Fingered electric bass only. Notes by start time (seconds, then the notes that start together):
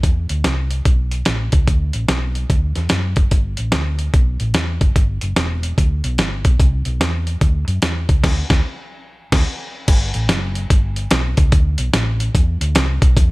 0.03 E2
0.30 D2
0.45 C2
0.86 B1
1.27 A1
1.53 C#2
1.67 D2
1.94 A1
2.09 B1
2.50 D2
2.77 E2
2.91 F#2
3.17 F#1
3.32 G1
3.59 A1
3.73 D2
4.14 B1
4.41 A1
4.55 E2
4.81 F#1
4.96 G1
5.22 F#1
5.37 E1
5.78 D2
6.04 B1
6.19 G1
6.45 B1
6.60 C2
6.86 B1
7.00 E2
7.41 D2
7.68 F#2
7.82 E2
8.09 C#2
8.24 D2
8.50 D2
9.32 D2
9.88 G1
10.15 A1
10.29 F#1
10.70 G1
11.11 B1
11.38 C#2
11.52 D2
11.79 B1
11.93 A1
12.35 E2
12.61 D2
12.76 C2
13.02 B1
13.17 E2